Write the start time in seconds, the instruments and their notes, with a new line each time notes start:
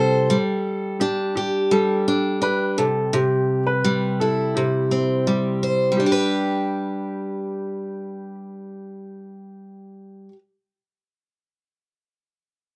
Already playing: steel-string acoustic guitar C3 G3 C4 E4 C5, upright piano A4
0.30 steel-string acoustic guitar G3
1.00 steel-string acoustic guitar D4, upright piano G4
1.35 upright piano G4, steel-string acoustic guitar G4
1.71 steel-string acoustic guitar G3, upright piano A4
2.08 steel-string acoustic guitar D4
2.42 steel-string acoustic guitar D4, upright piano B4
2.78 steel-string acoustic guitar C3, upright piano A4
3.13 steel-string acoustic guitar C3, upright piano G4
3.67 upright piano B4
3.84 steel-string acoustic guitar G3
4.20 steel-string acoustic guitar E4, upright piano A4
4.55 steel-string acoustic guitar C3, upright piano G4
4.91 steel-string acoustic guitar C4
5.27 steel-string acoustic guitar G3
5.63 steel-string acoustic guitar C5
5.92 steel-string acoustic guitar G3
5.96 steel-string acoustic guitar D4, upright piano G4
6.06 steel-string acoustic guitar G4
6.12 steel-string acoustic guitar B4